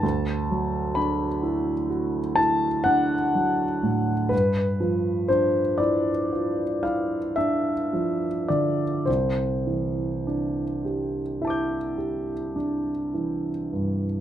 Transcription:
Already playing: A5
0.03 D2
0.51 F#3
0.95 D4 B5
1.43 E4
1.90 F#4
2.36 E4 A5
2.84 D4 F#5
3.35 F#3
3.83 A2
4.29 G2 B4
4.80 F3
5.28 D4 C5
5.78 E4 D5
6.32 F4
6.83 E4 F5
7.36 D4 E5
7.93 F3
8.48 D3 D5
9.05 C2 C5
9.67 E3
10.27 D4
10.85 G4
11.41 E4 E5 A5
11.47 D6 G6
11.98 G4
12.56 D4
13.14 E3
13.73 G2

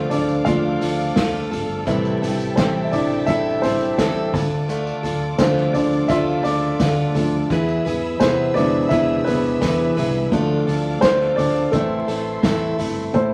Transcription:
Already playing: D3 F3 A3 C4 D4 F4 A4 C5 D5 F5 D6
0.10 D2 D4 F4 A4 D5, floor tom, hi-hat pedal, open hi-hat, tambourine
0.29 tambourine
0.45 D2 D3 F3 A3 D4 F4 A4 F5, kick, hi-hat pedal, open hi-hat, tambourine
0.81 D2 D4 F4 A4, hi-hat pedal, open hi-hat, tambourine
0.99 tambourine
1.16 D2 D3 A3 D4 F4 A4, kick, snare, hi-hat pedal, open hi-hat, tambourine
1.51 G1 D4 F4 A4, floor tom, hi-hat pedal, open hi-hat, tambourine
1.86 A1 A2 C3 E3 G3 C4 E4 A4 B4 E5 G5 A5, kick, hi-hat pedal, open hi-hat, tambourine
2.05 tambourine
2.22 A1 G3 C4 E4 A4, floor tom, hi-hat pedal, open hi-hat, tambourine
2.40 tambourine
2.56 A1 A2 E3 G3 C4 E4 A4 C5, kick, snare, hi-hat pedal, open hi-hat, tambourine
2.85 E5
2.91 A1 G3 C4 D4 E4 A4 D5, floor tom, hi-hat pedal, open hi-hat, tambourine
3.26 A1 G3 C4 E4 A4 E5, kick, hi-hat pedal, open hi-hat, tambourine
3.62 A1 G3 C4 E4 A4 C5, floor tom, hi-hat pedal, open hi-hat, tambourine
3.81 tambourine
3.98 A1 A2 E3 G3 C4 E4 A4, kick, snare, hi-hat pedal, open hi-hat, tambourine
4.33 D2 D4 F4 A4 D5 D6, kick, floor tom, hi-hat pedal, open hi-hat, tambourine
4.69 D3 A3 D4 F4 A4, hi-hat pedal, open hi-hat, tambourine
4.87 tambourine
5.03 D2 D4 F4 A4, floor tom, hi-hat pedal, open hi-hat, tambourine
5.38 D2 D3 F3 A3 C4 D4 F4 A4 C5, kick, snare, hi-hat pedal, open hi-hat, tambourine
5.57 snare
5.73 D2 D4 F4 A4 D5, floor tom, hi-hat pedal, open hi-hat, tambourine
5.77 D4
5.93 tambourine
6.08 D2 A3 D4 F4 A4 E5, kick, hi-hat pedal, open hi-hat, tambourine
6.43 D2 D4 F4 A4 D5, hi-hat pedal, open hi-hat, tambourine
6.47 D4
6.80 D2 D3 A3 D4 F4 A4, kick, snare, hi-hat pedal, open hi-hat, tambourine
7.15 D2 D3 F3 A3 D4 F4 A4, floor tom, hi-hat pedal, open hi-hat, tambourine
7.50 E2 E3 B3 E4 G#4 B4 E5 B5 E6, kick, hi-hat pedal, open hi-hat, tambourine
7.68 tambourine
7.85 E2 E4 G#4 B4, floor tom, hi-hat pedal, open hi-hat, tambourine
8.20 E2 C3 E3 B3 E4 G#4 B4 C5, kick, snare, hi-hat pedal, open hi-hat, tambourine
8.54 E2 E3 G#3 B3 D4 E4 G#4 B4 D5, floor tom, hi-hat pedal, open hi-hat, tambourine
8.89 E2 B3 E4 G#4 E5, kick, hi-hat pedal, open hi-hat, tambourine
8.94 B4
9.24 E2 B3 G#4 B4, floor tom, hi-hat pedal, open hi-hat, tambourine
9.29 E4
9.44 tambourine
9.61 E2 E3 B3 E4 G#4 B4, kick, snare, hi-hat pedal, open hi-hat, tambourine
9.97 C2 E4 G#4 B4, floor tom, hi-hat pedal, open hi-hat, tambourine
10.32 D2 D3 F3 A3 D4 F4 A4 D5 F5 D6, kick, hi-hat pedal, open hi-hat, tambourine
10.67 D2 D4 F4 A4, floor tom, hi-hat pedal, open hi-hat, tambourine
11.01 D2 D3 A3 C4 D4 F4 A4 C5, kick, snare, hi-hat pedal, open hi-hat, tambourine
11.20 snare
11.36 D2 D4 F4 A4 D5, floor tom, hi-hat pedal, open hi-hat, tambourine
11.40 D4
11.56 tambourine
11.72 A1 E3 A3 C4 E4 A4 C5 E5 C6, kick, hi-hat pedal, open hi-hat, tambourine
12.08 A1 A3 C4 E4 A4, hi-hat pedal, open hi-hat, tambourine
12.43 A1 A2 E3 A3 C4 E4 A4, kick, snare, hi-hat pedal, open hi-hat, tambourine
12.78 G1 A3 C4 E4 A4, floor tom, hi-hat pedal, open hi-hat, tambourine
13.13 A1 A2 A3 C4 E4 A4 C5, kick, closed hi-hat

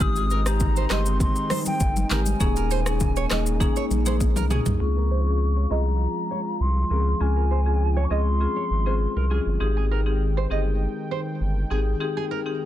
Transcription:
0.00 G#1 D#3 G#3 C4 D#4 G4 D#6, kick, low conga, shaker
0.16 G#4, shaker
0.30 A#4, shaker
0.46 G#3 C4 D#4 G4 A#5, cross-stick, shaker
0.60 kick, low conga, shaker
0.76 C5, shaker
0.90 G1 G#3 C4 D#4 G4 D#5 C6, cross-stick, clap, high conga, shaker
1.06 shaker
1.20 C6, kick, low conga, shaker
1.36 shaker
1.50 C5, cross-stick, open hi-hat, high conga, shaker
1.66 G5, high conga, shaker
1.80 G1, kick, shaker
1.96 high conga, shaker
2.10 G#1 G#3 C4 D#4 G4 A#4 G#5, clap, low conga, shaker
2.26 high conga, shaker
2.40 D#1 G#3 A#3 C#4 D#4 G#4, kick, low conga, shaker
2.56 A#4, shaker
2.71 C5, shaker
2.86 A#3 C#4 D#4 G#4, cross-stick, shaker
3.00 kick, low conga, shaker
3.16 C#5, shaker
3.30 D#1 A#3 C#4 D#4 G#4 D#5, cross-stick, clap, high conga, shaker
3.46 shaker
3.60 A#3 C#4 D#4 G#4, kick, low conga, shaker
3.76 C#5, shaker
3.91 A#1, high conga, shaker
4.06 A#3 C#4 D#4 G#4 C5, high conga, shaker
4.21 kick, high tom, shaker
4.36 C2 A#4, mid tom, high conga, shaker
4.50 A#3 C#4 D#4 G#4, mid tom, low conga, shaker
4.66 C2, floor tom, high conga, shaker
4.80 C#2 F3 G#3 C4 C#4 F4 G#4 C#6
4.97 A#4
5.11 C5
5.26 C4 C#4 F4 G#4
5.57 C#5
5.70 C2 C4 C#4 F4 G#4 D#5 A#5
6.31 C#5
6.60 C2 C6
6.90 C#2 C4 C#4 F4 G#4 A#4
7.20 C#2 C4 C#4 F4 G#4 G#5
7.37 A#4
7.51 C5
7.66 C4 C#4 F4 G#4
7.97 C#5
8.04 C#6
8.10 C#2 C4 C#4 F4 G#4 D#5 C6
8.40 C4 C#4 F4 G#4
8.56 C#5
8.71 G#1
8.86 C4 C#4 F4 G#4 C5
9.16 C2 A#4
9.30 C4 C#4 F4 G#4
9.46 G1
9.60 G#1 D#3 C4 D#4 G4 G#4 G5
9.77 G#4
9.91 A#4
10.06 C4 D#4 G4 G#4
10.37 C5
10.50 G1 C4 D#4 G4 G#4 D#5
11.11 C5
11.41 G1
11.70 G#1 C4 D#4 G4 G#4
12.00 C4 D#4 G4 G#4
12.17 G#4
12.31 A#4
12.46 C4 D#4 G4 G#4

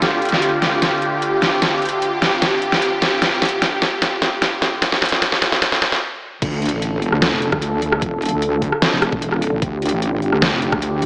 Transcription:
Already playing: D2 D3 F4
0.02 G4, snare, closed hi-hat
0.22 closed hi-hat
0.25 closed hi-hat
0.29 snare, closed hi-hat
0.42 closed hi-hat
0.62 snare, closed hi-hat
0.82 snare, closed hi-hat
1.02 closed hi-hat
1.22 closed hi-hat
1.42 snare, closed hi-hat
1.62 snare, closed hi-hat
1.82 closed hi-hat
1.85 closed hi-hat
1.89 closed hi-hat
2.02 closed hi-hat
2.22 snare, closed hi-hat
2.42 snare, closed hi-hat
2.62 closed hi-hat
2.72 snare
2.82 closed hi-hat
3.02 snare, closed hi-hat
3.22 snare, closed hi-hat
3.42 snare, closed hi-hat
3.45 closed hi-hat
3.49 closed hi-hat
3.62 snare, closed hi-hat
3.82 snare, closed hi-hat
4.02 snare, closed hi-hat
4.22 snare, closed hi-hat
4.42 snare, closed hi-hat
4.62 snare, closed hi-hat
4.82 snare, closed hi-hat
4.92 snare
5.02 snare, closed hi-hat
5.05 closed hi-hat
5.09 snare, closed hi-hat
5.22 snare, closed hi-hat
5.32 snare
5.42 snare, closed hi-hat
5.52 snare
5.62 snare, closed hi-hat
5.72 snare
5.82 snare, closed hi-hat
5.92 snare
6.42 D2 D3 D4 F4 A4, kick, closed hi-hat, crash
6.62 closed hi-hat
6.65 closed hi-hat
6.69 A1, closed hi-hat
6.82 closed hi-hat
7.02 open hi-hat
7.12 D2, cross-stick
7.22 D2, snare, closed hi-hat
7.32 F1
7.42 closed hi-hat
7.52 D2, kick, cross-stick
7.62 closed hi-hat
7.82 D2, open hi-hat
7.92 cross-stick
8.02 E1, kick, closed hi-hat
8.22 closed hi-hat
8.25 closed hi-hat
8.29 D2, closed hi-hat
8.42 closed hi-hat
8.62 kick, open hi-hat
8.72 cross-stick
8.82 snare, closed hi-hat
8.92 F1
9.02 cross-stick, closed hi-hat
9.12 E1, kick
9.22 closed hi-hat
9.32 cross-stick
9.42 open hi-hat
9.52 A1
9.62 D2 G4, kick, closed hi-hat
9.82 closed hi-hat
9.86 closed hi-hat
9.89 A1, closed hi-hat
10.02 closed hi-hat
10.22 open hi-hat
10.32 D2, cross-stick
10.42 D2, snare, closed hi-hat
10.52 F1
10.62 closed hi-hat
10.72 D2, kick, cross-stick
10.82 closed hi-hat
11.02 D2, open hi-hat

